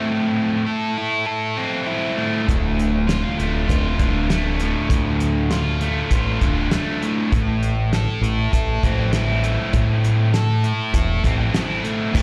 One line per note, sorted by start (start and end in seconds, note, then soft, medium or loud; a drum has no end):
0.00 2.16 A3 medium
0.00 0.67 C4 medium
0.00 0.96 E4 medium
0.00 0.66 A4 medium
0.05 1.57 A2 medium
0.66 1.26 A4 medium
0.98 1.85 E4 medium
1.26 3.07 A4 medium
1.57 2.48 C4 medium
1.87 2.48 E4 medium
2.17 3.38 A3 medium
2.47 3.22 D1 medium
2.47 3.99 D2 medium
2.47 kick loud
2.47 closed hi-hat medium
2.79 closed hi-hat medium
3.07 3.67 F4 medium
3.07 snare medium
3.07 closed hi-hat medium
3.38 3.64 D1 medium
3.38 4.30 A3 medium
3.38 closed hi-hat soft
3.68 3.94 D1 medium
3.68 5.20 F4 medium
3.68 kick medium
3.68 closed hi-hat medium
3.99 4.73 D1 medium
3.99 5.50 D3 medium
3.99 kick medium
3.99 closed hi-hat medium
4.30 5.81 A3 medium
4.30 snare loud
4.30 closed hi-hat medium
4.60 6.12 A2 medium
4.60 closed hi-hat medium
4.89 5.88 D2 medium
4.89 6.42 D2 medium
4.89 kick loud
4.89 closed hi-hat medium
5.20 closed hi-hat medium
5.51 6.11 F4 medium
5.51 snare medium
5.51 closed hi-hat medium
5.81 6.73 A3 medium
5.81 closed hi-hat medium
6.11 6.35 A1 loud
6.11 7.32 F4 medium
6.11 kick medium
6.11 closed hi-hat medium
6.41 6.65 D1 medium
6.41 7.32 D3 medium
6.41 kick medium
6.41 closed hi-hat medium
6.71 8.84 A3 medium
6.71 snare loud
6.71 closed hi-hat medium
7.02 7.32 A2 medium
7.02 closed hi-hat medium
7.32 8.05 A1 medium
7.32 8.83 A2 medium
7.32 kick loud
7.32 closed hi-hat medium
7.63 closed hi-hat medium
7.93 8.53 A4 medium
7.93 snare medium
7.93 closed hi-hat medium
8.21 8.46 A1 medium
8.21 9.11 E4 medium
8.21 closed hi-hat medium
8.53 8.77 A1 medium
8.53 10.04 A4 medium
8.53 kick medium
8.53 closed hi-hat medium
8.83 9.57 A1 medium
8.83 10.34 C4 medium
8.83 kick medium
8.83 closed hi-hat medium
9.13 10.64 E4 medium
9.13 snare medium
9.13 closed hi-hat medium
9.44 10.94 A3 medium
9.44 closed hi-hat medium
9.73 10.71 A2 medium
9.73 11.25 A2 medium
9.73 kick loud
9.73 closed hi-hat medium
10.04 closed hi-hat medium
10.33 10.93 A4 medium
10.33 snare medium
10.33 closed hi-hat medium
10.64 11.52 E4 medium
10.64 closed hi-hat medium
10.93 11.18 E1 medium
10.93 12.15 A4 medium
10.93 kick medium
10.93 closed hi-hat medium
11.23 11.48 A1 medium
11.23 12.14 C4 medium
11.23 kick medium
11.23 closed hi-hat medium
11.53 12.14 E4 medium
11.53 snare medium
11.53 closed hi-hat medium
11.84 12.14 A3 medium
11.84 closed hi-hat medium
12.12 12.22 D1 medium
12.12 12.22 D2 medium
12.12 12.22 A2 loud
12.12 kick loud
12.12 crash loud